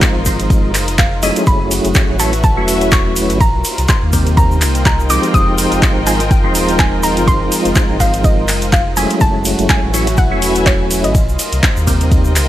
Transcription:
Already playing: F3 G#3 C4 D#4 F4 A#4 C5 D#5
0.02 kick, clap, closed hi-hat, ride, shaker
0.15 G#1
0.25 F3 G#3 C4 D#4 F4, kick, open hi-hat, ride, shaker
0.40 closed hi-hat, shaker
0.50 kick, closed hi-hat, ride, shaker
0.74 F1, clap, open hi-hat, ride, shaker
0.88 closed hi-hat, shaker
0.98 F5, kick, clap, closed hi-hat, ride, shaker
1.22 F#3 A3 C#4 E4 G#4 D#5, open hi-hat, ride, shaker
1.36 closed hi-hat, shaker
1.47 F#1 A3 E4 F#4 C#5 B5, kick, closed hi-hat, ride, shaker
1.71 open hi-hat, ride, shaker
1.85 F#1, closed hi-hat, shaker
1.92 B4, kick, clap, closed hi-hat, ride, shaker
2.09 A1
2.17 F#3 A3 C#4 E4 F#4 E5 A5, open hi-hat, ride, shaker
2.33 closed hi-hat, shaker
2.44 A5, kick, closed hi-hat, ride, shaker
2.57 E1 F#3 A3 C#4 E4 F#4
2.68 open hi-hat, ride, shaker
2.81 closed hi-hat, shaker
2.92 C#6, kick, clap, closed hi-hat, ride, shaker
3.16 open hi-hat, ride, shaker
3.30 A1, closed hi-hat, shaker
3.40 A#3 D#4 F4 G4 C5 A#5, kick, closed hi-hat, ride, shaker
3.52 C2 A#4
3.61 D#5, open hi-hat, ride, shaker
3.78 C2, closed hi-hat, shaker
3.88 C6, kick, clap, closed hi-hat, ride, shaker
4.02 D#2
4.13 C3 D#3 G3 A#3 C4, kick, open hi-hat, ride, shaker
4.26 G5, closed hi-hat, shaker
4.37 A#5, kick, closed hi-hat, ride, shaker
4.51 shaker
4.61 C2, clap, open hi-hat, ride, shaker
4.75 closed hi-hat, shaker
4.85 A#5, kick, clap, closed hi-hat, ride, shaker
5.00 shaker
5.10 F3 G#3 C4 D#4 G4 D6, open hi-hat, ride, shaker
5.23 closed hi-hat, shaker
5.34 F1 G#3 F4 D#6, kick, closed hi-hat, ride, shaker
5.58 open hi-hat, ride, shaker
5.72 F1, closed hi-hat, shaker
5.82 kick, clap, closed hi-hat, ride, shaker
5.96 G#1
6.06 F3 G#3 C4 D#4 F4 G#5, open hi-hat, ride, shaker
6.20 closed hi-hat, shaker
6.31 G5, kick, closed hi-hat, ride, shaker
6.44 D#1 F3 G#3 C4 D#4 F4
6.55 open hi-hat, ride, shaker
6.69 closed hi-hat, shaker
6.79 G#5, kick, clap, closed hi-hat, ride, shaker
7.03 A#5, open hi-hat, ride, shaker
7.17 G#1, closed hi-hat, shaker
7.27 C6, kick, closed hi-hat, ride, shaker
7.41 F1
7.52 open hi-hat, ride, shaker
7.65 F1, closed hi-hat, shaker
7.75 kick, clap, closed hi-hat, ride, shaker
7.89 G#1
8.00 F3 G#3 C4 D#4 F4 F5, kick, open hi-hat, ride, shaker
8.14 closed hi-hat, shaker
8.24 D#5, kick, closed hi-hat, ride, shaker
8.48 F1, clap, open hi-hat, ride, shaker
8.62 closed hi-hat, shaker
8.72 F5, kick, clap, closed hi-hat, ride, shaker
8.97 F#3 G#3 A3 C#4 E4 G#5, open hi-hat, ride, shaker
9.10 closed hi-hat, shaker
9.21 F#1 F#3 E4 F#4 C#5 A5, kick, closed hi-hat, ride, shaker
9.45 open hi-hat, ride, shaker
9.59 F#1, closed hi-hat, shaker
9.69 G#5, kick, clap, closed hi-hat, ride, shaker
9.81 A1 B4 E5
9.94 F#3 A3 C#4 E4 F#4, open hi-hat, ride, shaker
10.07 G#5, closed hi-hat, shaker
10.17 F#5, kick, closed hi-hat, ride, shaker
10.31 E1 F#3 A3 C#4 E4 F#4
10.42 open hi-hat, ride, shaker
10.55 closed hi-hat, shaker
10.66 C#5, kick, clap, closed hi-hat, ride, shaker
10.91 open hi-hat, ride, shaker
11.04 A1 D#5, closed hi-hat, shaker
11.15 A#3 D#4 F4 G4 C5, kick, closed hi-hat, ride, shaker
11.28 C2 D#5, shaker
11.39 open hi-hat, ride, shaker
11.46 A#4
11.52 C2, closed hi-hat, shaker
11.63 kick, clap, closed hi-hat, ride, shaker
11.77 D#2, shaker
11.87 C3 D#3 G3 A#3 C4, kick, open hi-hat, ride, shaker
12.01 G5, closed hi-hat, shaker
12.11 kick, closed hi-hat, ride, shaker
12.25 shaker
12.36 C2, clap, open hi-hat, ride, shaker

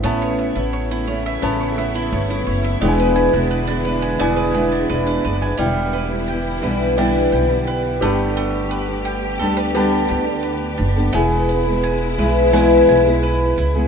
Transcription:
0.03 A1 A2 C#3 E3 A3 B3 C#4 E4 B4 A5
0.22 C#5
0.39 E5
0.55 A1 B3 C#4 E4
0.73 C#5
0.89 B3 C#4 E4
1.07 A3 B3 C#4 E4 C#5
1.26 E5
1.42 A1 B3 C#4 B4 A5
1.61 C#5
1.77 A3 B3 C#4 E4 E5
1.95 E4
2.11 G1 A3 B3 C#4 E4 C#5
2.30 E4
2.47 F#1 C#5
2.64 E5
2.81 E1 E2 D3 E3 G#3 B3 D4 E4 D5 G5
2.89 G#5
2.99 B4
3.16 G#5
3.33 E1 G#3 B3 D4 E4
3.51 B4
3.67 G#3 B3 D4 E4
3.85 G#3 B3 D4 E4 B4
4.02 G#5
4.19 E1 B3 E4 D5 G#5
4.36 B4
4.54 G#3 B3 D4 E4 G#5
4.72 D4
4.88 E1 G#3 B3 D4 E4 B4
5.07 D4
5.24 F#1 B4
5.42 G#5
5.57 E1 D3 E3 G3 B3 E4 D5 G5
5.93 B4
6.09 G3 B3 E4
6.28 G5
6.61 B1 D3 E3 G3 B3 E4 B4
6.96 D3 E3 G3 B3 D4 E4 D5 G5
7.32 B1 G5
7.48 G3 B3 E4
7.67 B4
8.01 G1 G3 A3 B3 D4 G4 A4 B4 A5
8.37 A3
8.71 B4
8.88 B3 D4 A4
9.05 G5
9.39 D2 G3 B3 D4 A4
9.57 B4
9.74 G3 B3 D4 G4 A4 B4 A5
10.09 D2 G5
10.26 B3 D4 A4
10.43 B4
10.78 F#1 D4
10.96 G3 B3 D4 A4
11.13 E1 G#3 B3 E4 G#4 B4 G#5
11.49 B4
11.66 G#3 B3 E4 G#4
11.84 G#5
12.18 B1 E2 E3 G#3 B3 E4 G#4 B4
12.51 E2 E3 G#3 B3 E4 G#4 B4 G#5
12.88 B1 G#5
13.05 G#3 B3 E4 G#4
13.23 B4
13.57 C#2 E4
13.75 E2 E3 G#3 B3 E4 G#4

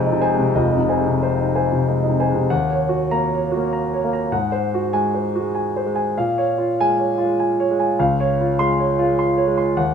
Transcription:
Already playing: F1 F2 C3 G#3 D#4 C5 D#5 G#5
0.07 D#4
0.12 C3
0.21 C5 G#5
0.34 G#3
0.39 C3
0.55 F1 F2 D#5
0.72 D#4
0.78 C3
0.89 C5 G#5
1.00 G#3
1.07 C3
1.23 C5
1.40 D#4
1.55 C5 G#5
1.72 C3
1.88 G#3 D#5
2.03 D#4
2.08 C3
2.20 C5 G#5
2.29 G#3
2.34 C3
2.50 D#2 F#5
2.71 C#5
2.89 F#4
3.11 A#3 A#5
3.32 C#5
3.52 F#4
3.56 A#3
3.73 A#5
3.94 C#5
4.04 A#3
4.13 A#5
4.32 G#2 F#5
4.52 C5
4.74 F#4
4.93 G#3 G#5
5.14 C5
5.35 F#4
5.40 G#3
5.55 G#5
5.76 C5
5.86 G#3
5.95 G#5
6.17 A#2 F5
6.38 C#5
6.58 F4
6.80 G#3 G#5
6.99 C#5
7.18 F4
7.24 G#3
7.40 G#5
7.60 C#5
7.71 G#3
7.80 G#5
7.99 C#2 F5
8.20 C#5
8.41 F4
8.59 G#3 C6
8.79 C#5
8.99 F4
9.03 G#3
9.19 C6
9.38 C#5
9.47 G#3
9.58 C6
9.76 D#2 F#5

